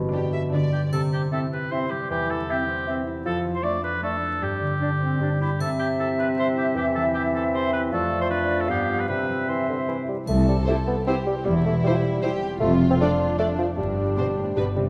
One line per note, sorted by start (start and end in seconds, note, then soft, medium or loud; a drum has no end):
0.00 0.94 G2 soft
0.00 0.71 B2 medium
0.00 0.51 D3 soft
0.00 0.32 G3 soft
0.00 1.51 G4 soft
0.13 0.71 D4 soft
0.13 0.43 D4 soft
0.13 0.32 G4 soft
0.13 0.43 D5 soft
0.33 1.89 G3 soft
0.33 0.41 E5 soft
0.52 0.94 D3 soft
0.52 0.83 D4 soft
0.52 0.92 D5 soft
0.52 0.83 D5 soft
0.72 0.94 D4 soft
0.72 0.81 G4 soft
0.92 1.26 C3 medium
0.92 2.12 C3 soft
0.92 1.02 A4 medium
0.92 triangle soft
1.13 3.28 C4 soft
1.13 1.22 G4 medium
1.32 1.46 C4 soft
1.32 1.70 E4 soft
1.32 1.41 A4 medium
1.32 1.39 E5 soft
1.52 2.86 G4 soft
1.52 1.73 B4 medium
1.71 1.86 C4 soft
1.71 2.47 E4 soft
1.71 1.92 C5 medium
1.71 1.79 E5 soft
1.90 3.27 G3 soft
1.90 2.10 G4 medium
2.10 3.28 E2 soft
2.10 2.43 E3 medium
2.10 2.31 G4 medium
2.29 3.27 E3 soft
2.29 2.52 A4 medium
2.49 2.64 C4 soft
2.49 3.06 E4 soft
2.49 3.07 G4 medium
2.49 2.56 E5 soft
2.68 3.27 C5 soft
2.87 3.02 C4 soft
2.87 3.28 G4 soft
2.87 2.94 E5 soft
3.07 3.28 E4 soft
3.25 4.43 F2 medium
3.25 3.58 F3 medium
3.25 3.39 A4 medium
3.45 4.43 F3 soft
3.55 3.65 C5 medium
3.63 3.77 A3 soft
3.63 4.01 D4 soft
3.63 3.83 D5 medium
3.63 3.72 D5 medium
3.83 4.43 A4 soft
3.83 4.03 B4 medium
4.02 4.17 A3 soft
4.02 4.79 D4 soft
4.02 4.44 A4 medium
4.02 4.11 D5 soft
4.22 4.43 A3 soft
4.41 5.17 G2 soft
4.41 4.75 G3 soft
4.41 5.40 G4 medium
4.61 5.22 D3 soft
4.80 5.38 D4 soft
4.80 4.90 D4 soft
4.80 4.89 D5 soft
5.00 5.20 C4 soft
5.00 5.22 C5 soft
5.19 5.61 G2 soft
5.19 5.53 G3 soft
5.19 5.30 D4 soft
5.19 5.29 D5 soft
5.40 5.61 D4 soft
5.40 5.50 E4 soft
5.40 6.35 G4 soft
5.40 5.60 G4 soft
5.59 6.78 C3 soft
5.59 6.77 C3 soft
5.59 7.94 C4 soft
5.59 5.70 A4 medium
5.59 7.88 E5 soft
5.59 triangle soft
5.79 7.93 G3 soft
5.79 5.88 G4 medium
5.99 6.55 E4 soft
5.99 6.09 A4 medium
6.17 6.28 B4 medium
6.17 7.33 C5 soft
6.36 7.52 G4 soft
6.36 6.48 C5 medium
6.56 7.13 E4 soft
6.56 6.66 G4 medium
6.75 7.93 E2 soft
6.75 7.93 E3 medium
6.75 6.85 G4 medium
6.95 7.93 E3 soft
6.95 7.04 A4 medium
7.14 7.71 E4 soft
7.14 7.23 G4 medium
7.35 7.43 A4 medium
7.35 7.94 C5 soft
7.54 7.93 G4 soft
7.54 7.72 C5 medium
7.72 7.93 E4 soft
7.72 7.82 B4 medium
7.91 8.71 F2 medium
7.91 8.71 F3 medium
7.91 8.71 A3 medium
7.91 8.21 A4 medium
7.91 8.70 D5 medium
8.11 9.11 F3 soft
8.21 8.26 C5 medium
8.30 8.87 D4 soft
8.30 8.62 B4 medium
8.50 8.71 A4 soft
8.60 8.69 A4 medium
8.68 9.10 G2 medium
8.68 9.09 G3 medium
8.68 9.09 B3 soft
8.68 9.00 G4 medium
8.68 9.12 F5 soft
8.88 9.10 D4 soft
8.88 9.11 F4 soft
8.99 9.08 B4 medium
9.08 10.26 C3 soft
9.08 9.45 C3 soft
9.08 10.07 C4 soft
9.08 9.51 B4 medium
9.08 10.09 E5 soft
9.29 11.83 G3 soft
9.48 9.68 E3 soft
9.48 10.07 E4 soft
9.48 10.09 C5 medium
9.68 9.78 D3 soft
9.68 12.61 C5 soft
9.88 9.97 E3 soft
9.88 10.46 G4 soft
10.08 10.17 G3 soft
10.08 11.25 E4 soft
10.27 10.61 C2 soft
10.27 11.46 C3 soft
10.27 10.48 A3 medium
10.27 11.03 A4 medium
10.27 triangle soft
10.47 10.57 G3 soft
10.47 10.85 G4 soft
10.66 10.76 A3 medium
10.66 11.05 C4 soft
10.66 10.77 E4 soft
10.66 10.76 G4 soft
10.66 10.74 C5 soft
10.86 10.96 B3 medium
10.86 12.61 G4 soft
11.06 12.40 C4 soft
11.06 11.15 C4 medium
11.06 11.16 E4 soft
11.06 11.15 G4 soft
11.06 11.46 G4 soft
11.06 11.15 C5 soft
11.26 11.35 G3 medium
11.26 11.63 E4 soft
11.45 11.77 E1 soft
11.45 12.62 E2 soft
11.45 11.77 E2 soft
11.45 11.54 G3 medium
11.45 12.22 E4 medium
11.64 11.74 A3 medium
11.64 12.02 E4 soft
11.84 11.92 G3 medium
11.84 12.21 G3 soft
11.84 11.94 E4 soft
11.84 11.94 G4 soft
11.84 11.94 C5 soft
11.90 11.98 F3 medium
11.97 12.41 G3 medium
12.03 12.62 E4 soft
12.22 12.62 G3 soft
12.22 12.31 E4 soft
12.22 12.60 G4 medium
12.22 12.32 G4 soft
12.22 12.30 C5 soft
12.41 12.62 C4 soft
12.60 12.93 F1 medium
12.60 13.78 F2 soft
12.60 12.93 F2 medium
12.60 12.73 A3 medium
12.60 13.36 F4 medium
12.80 13.18 A4 soft
12.90 12.94 C4 medium
12.99 13.37 A3 soft
12.99 13.08 D4 soft
12.99 13.38 D4 medium
12.99 13.09 A4 soft
12.99 13.10 D5 soft
13.19 13.79 A4 soft
13.38 13.79 A3 soft
13.38 13.47 A3 medium
13.38 13.46 D4 soft
13.38 13.76 D4 soft
13.38 13.46 A4 soft
13.38 13.47 D5 soft
13.57 13.67 F3 medium
13.57 14.74 D4 soft
13.76 14.10 G1 soft
13.76 14.54 G2 soft
13.76 14.10 G2 soft
13.76 14.74 G3 medium
13.76 14.74 D4 soft
13.96 14.34 G4 soft
14.16 14.25 B2 soft
14.16 14.57 C4 soft
14.16 14.25 D4 soft
14.16 14.25 G4 soft
14.16 14.26 C5 soft
14.36 14.45 A2 soft
14.36 14.75 G4 soft
14.55 14.89 G1 soft
14.55 14.89 G2 soft
14.55 14.64 B2 soft
14.55 14.64 D4 soft
14.55 14.64 G4 soft
14.55 14.65 B4 soft
14.75 14.84 C3 soft
14.75 14.85 G3 soft
14.75 14.89 D4 soft
14.75 14.89 G4 soft